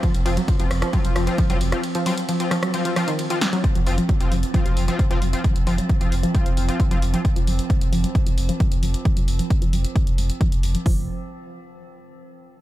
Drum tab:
RD |xxxxxxxxxxxxxxxx|xxxxxxxxxxxxxxxx|----------------|----------------|
HH |xxoxxxoxxxoxxxox|xxoxxxoxxxoxxxoo|xxoxxxoxxxoxxxox|xxoxxxoxxxoxxxox|
SD |------rr--r----r|------rr--r---o-|----------------|----------------|
BD |o---o---o---o---|----------------|o---o---o---o---|o---o---o---o---|

RD |----------------|----------------|----------------|
HH |xxoxxxoxxxoxxxox|xxoxxxoxxxoxxxox|o---------------|
SD |----------------|----------------|----------------|
BD |o---o---o---o---|o---o---o---o---|o---------------|